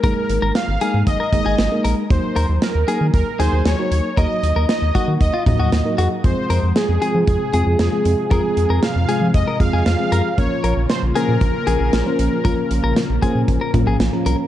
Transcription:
<<
  \new Staff \with { instrumentName = "Analog polysynth" } { \time 4/4 \key bes \minor \tempo 4 = 116 bes'4 f''4 ees''8 ees''4 r8 | c''4 bes'4 bes'8 c''8 des''4 | ees''4 ees''8 ees''8 ees''8 ees''4 r8 | c''4 aes'4 aes'4 aes'4 |
aes'4 f''4 ees''8 f''4. | des''4 c''8 bes'2~ bes'8~ | bes'2. r4 | }
  \new Staff \with { instrumentName = "Clean electric guitar" } { \time 4/4 \key bes \minor bes'16 r8 bes'16 r8 aes'8 r16 bes'16 r16 aes'16 r8 bes'16 r16 | r8 bes'16 r8. aes'8 r8 aes'8. r8. | bes'16 r8 bes'16 r8 ges'8 r16 f'16 r16 ges'16 r8 ges'16 r16 | r8 bes'16 r8. aes'8 r8 aes'8. r8. |
bes'16 r8 bes'16 r8 aes'8 r16 bes'16 r16 aes'16 r8 bes'16 r16 | r8 bes'16 r8. aes'8 r8 aes'8. r8. | bes'16 r8 bes'16 r8 aes'8 r16 bes'16 r16 aes'16 r8 bes'16 r16 | }
  \new Staff \with { instrumentName = "FM electric piano" } { \time 4/4 \key bes \minor <aes bes ees' aes' bes'>4~ <aes bes ees' aes' bes'>16 r16 <aes bes ees' aes' bes'>8. r16 <aes bes ees' aes' bes'>8 r16 <aes bes ees' aes' bes'>8 r16 | <ges bes ees' ges' bes'>4~ <ges bes ees' ges' bes'>16 r16 <ges bes ees' ges' bes'>8. r16 <ges bes ees' ges' bes'>8 r16 <ges bes ees' ges' bes'>8 r16 | <ges bes ees' ges' bes'>4~ <ges bes ees' ges' bes'>16 r16 <ges bes ees' ges' bes'>8. r16 <ges bes ees' ges' bes'>8 r16 <ges bes ees' ges' bes'>8 r16 | <f aes c' f' aes'>4~ <f aes c' f' aes'>16 r16 <f aes c' f' aes'>8. r16 <f aes c' f' aes'>8 r16 <f aes c' f' aes'>8 r16 |
<f aes c' f' aes'>4~ <f aes c' f' aes'>16 r16 <f aes c' f' aes'>8. r16 <f aes c' f' aes'>8 r16 <f aes c' f' aes'>8 r16 | <f bes des' f' bes'>4~ <f bes des' f' bes'>16 r16 <f bes des' f' c''>8. r16 <f bes des' f' bes'>8 r16 <f bes des' f' c''>8 r16 | <f bes des' f' bes'>4~ <f bes des' f' bes'>16 r16 <f bes des' f' c''>8. r16 <f bes des' f' bes'>8 r16 <f bes des' f' bes'>8 r16 | }
  \new Staff \with { instrumentName = "String machine" } { \clef bass \time 4/4 \key bes \minor << { r1 | r1 | r1 | f'1~ |
f'1~ | f'1~ | f'1 | } \\ { r1 | r1 | r1 | <c aes>1~ |
<c aes>1 | <des bes>1~ | <des bes>1 | } >> }
  \new Staff \with { instrumentName = "Analog synth bass" } { \clef bass \time 4/4 \key bes \minor aes,,16 r16 aes,,16 aes,,16 r16 aes,,16 r16 aes,16 aes,,16 r16 aes,,16 aes,,16 aes,,16 r16 bes,,16 r16 | ees,16 r16 ees,16 ees,16 r16 ees,16 r16 ees16 ees,16 r16 ees,16 ees,16 ees,16 r16 ees,16 r16 | ees,16 r16 ees,16 ees,16 r16 ees,16 r16 ees16 ees,16 r16 ees,16 ees,16 ees,16 r16 f,16 r16 | f,16 r16 f,16 f,16 r16 f,16 r16 f16 f,16 r16 f,16 f,16 f,16 r16 f,16 r16 |
f,16 r16 f,16 f,16 r16 f,16 r16 f16 f,16 r16 f,16 f,16 f,16 r16 ges,16 r16 | bes,,16 r16 bes,,16 bes,,16 r16 bes,,16 r16 bes,16 bes,,16 r16 bes,,16 bes,,16 bes,,16 r16 bes,,16 r16 | bes,,16 r16 bes,,16 bes,,16 r16 bes,,16 r16 bes,16 bes,,16 r16 bes,,16 bes,,16 bes,,16 r16 c,16 r16 | }
  \new DrumStaff \with { instrumentName = "Drums" } \drummode { \time 4/4 <hh bd>8 hh8 <hh sn>8 hh8 <hh bd>8 <hh bd>8 <hh sn>8 hh8 | <hh bd>8 hh8 <hh sn>8 hh8 <hh bd>8 hh8 <hh sn>8 hh8 | <hh bd>8 hh8 <hh sn>8 <hh bd>8 <hh bd>8 <hh bd toml>8 <hh sn>8 <cb hh>8 | <hh bd>8 hh8 <hh sn>8 hh8 <hh bd>8 hh8 <hh sn>8 hh8 |
<hh bd>8 hh8 <hh sn>8 hh8 <hh bd>8 <hh bd>8 <hh sn>8 hh8 | <hh bd>8 hh8 <hh sn>8 hh8 <hh bd>8 hh8 <hh sn>8 hh8 | <hh bd>8 hh8 <hh sn>8 <hh bd>8 <hh bd>8 <hh bd toml>8 <hh sn>8 hh8 | }
>>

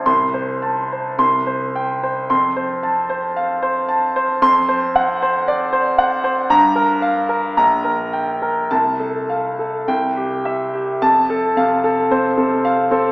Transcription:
<<
  \new Staff \with { instrumentName = "Grand piano" } { \time 2/4 \key f \major \tempo 4 = 55 << { c'''8 r8 c'''8 r8 | c'''8 r4. | c'''8 r4. | bes''8 r8 bes''8 r8 |
a''8 r8 g''8 r8 | a''8 r4. | } \\ { r16 c''16 a''16 c''16 r16 c''16 g''16 c''16 | r16 c''16 a''16 c''16 f''16 c''16 a''16 c''16 | r16 c''16 fis''16 c''16 d''16 c''16 fis''16 c''16 | r16 bes'16 f''16 bes'16 r16 bes'16 g''16 bes'16 |
r16 a'16 f''16 a'16 r16 g'16 e''16 g'16 | r16 a'16 f''16 a'16 c''16 a'16 f''16 a'16 | } >> }
  \new Staff \with { instrumentName = "Grand piano" } { \clef bass \time 2/4 \key f \major c,4 c,4 | f,2 | f,2 | g,4 bes,,4 |
c,4 c,4 | f,8 c8 c'16 c8 c'16 | }
>>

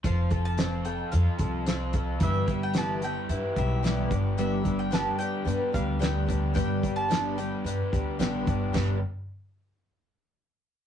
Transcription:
<<
  \new Staff \with { instrumentName = "Mandolin" } { \time 4/4 \key g \mixolydian \tempo 4 = 110 f''8. a''8. g''8 f''4. r8 | e''8. g''16 a''8 g''4 e''8 d''8. r16 | e''8. g''16 a''8 g''4 f''8 g''8. r16 | g''8. a''8. g''4. r4 |
r1 | }
  \new Staff \with { instrumentName = "Twelve-string acoustic guitar" } { \time 4/4 \key g \mixolydian <f c' f' a'>8 <c' f' a'>8 <f c' f' a'>8 <c' f' a'>8 <f c' f' a'>8 <c' f' a'>8 <f c' f' a'>8 <c' f' a'>8 | <g, e g b e' g'>8 <g b e' g'>8 <g, e g b e' g'>8 <g b e' g'>8 <g b e' g'>8 <g b e' g'>8 <g, e g b e' g'>8 <g b d' g'>8 | <g, d g b d' g'>8 <g b d' g'>8 <g, d g b d' g'>8 <g b d' g'>8 <g b d' g'>8 <g b d' g'>8 <g, d g b d' g'>8 <g b d' g'>8 | <g, d g b d' g'>8 <g b d' g'>8 <g, d g b d' g'>8 <g b d' g'>8 <g b d' g'>8 <g b d' g'>8 <g, d g b d' g'>8 <g b d' g'>8 |
<g, d g b d' g'>8 r2. r8 | }
  \new Staff \with { instrumentName = "Overdriven electric guitar" } { \time 4/4 \key g \mixolydian f8 f8 c'8 a'8 f'8 f8 c'8 f'8 | g8 g8 b8 g'8 e'8 g8 b8 g,8 | g,8 g8 b8 g'8 d'8 g8 b8 d'8 | g,8 g8 b8 g'8 d'8 g8 b8 d'8 |
<g, d g b d' g'>8 r2. r8 | }
  \new Staff \with { instrumentName = "Upright bass" } { \clef bass \time 4/4 \key g \mixolydian f,,2 f,16 r16 c,4. | g,,2 g,16 r16 b,,4 g,,8~ | g,,4. r8 g,16 r16 d,4. | g,,2 g,16 r16 d,8 a,,8 g,,8 |
g,,8 r2. r8 | }
  \new DrumStaff \with { instrumentName = "Drums" } \drummode { \time 4/4 <hh bd>8 <hh bd>8 <hh sn>8 hh8 hh8 <hh bd>8 <hh sn>8 <hh bd>8 | <hh bd>8 <hh bd>8 <hh sn>8 hh8 hh8 <hh bd>8 <hh sn>8 <hh bd>8 | hh8 <hh bd>8 <hh sn>8 hh8 hh8 <hh bd>8 <hh sn>8 <hh bd>8 | <hh bd>8 <hh bd>8 <hh sn>8 hh8 hh8 <hh bd>8 <hh sn>8 <hh bd>8 |
<cymc sn tomfh>4 r4 r4 r4 | }
>>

